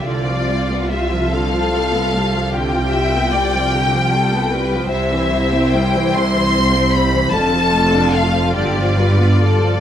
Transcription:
<<
  \new Staff \with { instrumentName = "Violin section" } { \time 12/8 \key g \mixolydian \tempo 4. = 49 d''4 e''8 f''4. g''2. | e''4 g''8 c'''4 b''8 a''4 f''8 d''4. | }
  \new Staff \with { instrumentName = "Violin section" } { \time 12/8 \key g \mixolydian f'4. a'4. g'8 e''8 d''8 g'8 a'8 b'8 | c''2. a'4. g'8 b'8 a'8 | }
  \new Staff \with { instrumentName = "Viola section" } { \clef bass \time 12/8 \key g \mixolydian << { f'1. | e'2. f'2. | } \\ { d16 f16 g16 b16 g16 f16 d16 f16 g16 b16 g16 f16 d16 f16 g16 b16 g16 f16 d16 f16 g16 b16 g16 f16 | c16 e16 g16 c'16 g16 e16 c16 e16 g16 c'16 g16 e16 d16 f16 a16 d'16 a16 f16 d16 f16 g16 b16 g16 f16 | } >> }
  \new Staff \with { instrumentName = "Cello section" } { \clef bass \time 12/8 \key g \mixolydian c,1. | c,2. f,4. g,4. | }
  \new Staff \with { instrumentName = "Double bass section" } { \clef bass \time 12/8 \key g \mixolydian c,1. | c,2. f,,4. g,,4. | }
>>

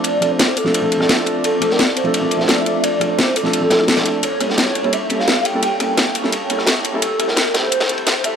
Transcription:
<<
  \new Staff \with { instrumentName = "Soft synth lead" } { \time 4/4 \key f \major \tempo 4 = 172 d''8. c''8. a'2 r8 | a'8. bes'8. c''8 e''2 | d''8. c''8. a'2 r8 | cis''4 cis''4 e''8. f''8. g''8~ |
g''4. r2 r8 | a'8. bes'8. c''2 e''8 | }
  \new Staff \with { instrumentName = "Ambient pad" } { \time 4/4 \key f \major << { <c' f' d''>1~ | <c' f' d''>1~ | <c' f' d''>1 | <bes g' cis''>1~ |
<bes g' cis''>1 | <f d' c''>1 | } \\ { a'1~ | a'1~ | a'1~ | a'1~ |
a'1 | e1 | } >> }
  \new Staff \with { instrumentName = "Felt piano" } { \time 4/4 \key f \major <f a c' d' a'>8 <f a c' d' a'>8 r8. <f a c' d' a'>8 <f a c' d' a'>8 <f a c' d' a'>4~ <f a c' d' a'>16~ | <f a c' d' a'>8 <f a c' d' a'>8 r8. <f a c' d' a'>8 <f a c' d' a'>8 <f a c' d' a'>4~ <f a c' d' a'>16~ | <f a c' d' a'>8 <f a c' d' a'>8 r8. <f a c' d' a'>8 <f a c' d' a'>16 <f a c' d' a'>8. <f a c' d' a'>8. | r8 <g bes cis' e' a'>8 r8. <g bes cis' e' a'>16 r8 <g bes cis' e' a'>8 r8. <g bes cis' e' a'>16 |
r8 <g bes cis' e' a'>8 r8. <g bes cis' e' a'>16 r8 <g bes cis' e' a'>8 r8. <g bes cis' e' a'>16 | r8 <g a c' e' a'>8 r8 <g a c' e' a'>8 r8 <g a c' e' a'>8 r8 <g a c' e' a'>8 | }
  \new DrumStaff \with { instrumentName = "Drums" } \drummode { \time 4/4 <hh cymr>8 <hh cymr ss>8 <hh cymr sn>8 <hho cymr>16 sn16 <hh cymr>8 <hh cymr>16 <ss sn>16 <hh cymr sn>8 <hh cymr>8 | <hh cymr>8 <hh cymr ss>16 sn16 <hh cymr sn>16 sn16 <hh cymr>16 cymr16 <hh cymr>8 <hh cymr>16 sn16 <hh cymr sn>16 ss16 <hh cymr>8 | <hh cymr>8 <hh cymr ss>8 <hh cymr sn>8 <hho cymr>16 sn16 <hh cymr>8 <hh cymr sn>16 ss16 <hh cymr sn>16 <cymr sn>16 <hh cymr>8 | <hh cymr>8 <hh cymr ss>16 sn16 <hh cymr sn>16 sn16 <hh cymr>16 cymr16 <hh cymr>8 <hh cymr>16 sn16 <hh cymr sn>16 ss16 <hh cymr>8 |
<hh cymr>8 <hh cymr ss>8 <hh cymr sn>8 <hho cymr>16 sn16 <hh cymr>8 <hh cymr>16 <ss sn>16 <hh cymr sn>8 <hh cymr>8 | <hh cymr>8 <hh cymr ss>16 sn16 <hh cymr sn>16 sn16 <hh cymr sn>8 <hh cymr>16 <cymr sn>16 hh16 cymr16 <hh cymr sn>16 ss16 <hh cymr>8 | }
>>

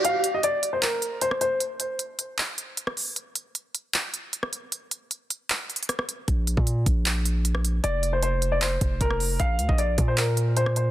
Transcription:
<<
  \new Staff \with { instrumentName = "Grand piano" } { \time 4/4 \key f \mixolydian \tempo 4 = 154 f''8. ees''16 d''8. c''16 bes'4 c''8 c''8 | r1 | r1 | r1 |
r1 | d''8. c''16 c''8. d''16 c''4 bes'4 | f''8. ees''16 d''8. c''16 bes'4 c''8 c''8 | }
  \new Staff \with { instrumentName = "808-style bass" } { \clef bass \time 4/4 \key f \mixolydian r1 | r1 | r1 | r1 |
bes,,8. bes,8. bes,,2~ bes,,8 | f,,2~ f,,8 f,,8 f,,4 | bes,,8 d,16 bes,,8. bes,2~ bes,8 | }
  \new DrumStaff \with { instrumentName = "Drums" } \drummode { \time 4/4 hh8 hh8 hh8 hh8 <hc hh>8 hh8 hh16 ss16 hh8 | hh8 hh8 hh8 hh8 <hc hh>8 hh8 hh16 ss16 hho8 | hh8 hh8 hh8 hh8 <hc hh>8 hh8 hh16 ss16 hh8 | hh8 hh8 hh8 hh8 \tuplet 3/2 { <hc hh>16 r16 r16 hh16 hh16 hh16 } <hh ss>16 ss16 hh8 |
<hh bd>8 hh16 bd16 hh8 <hh bd>8 <hc hh>8 hh8 hh16 ss16 hh8 | hh8 hh8 hh8 hh8 <hc hh>8 <hh bd>8 <hh bd>16 ss16 hho8 | <hh bd>8 hh16 bd16 hh8 <hh bd>8 <hc hh>8 hh8 hh16 ss16 hh8 | }
>>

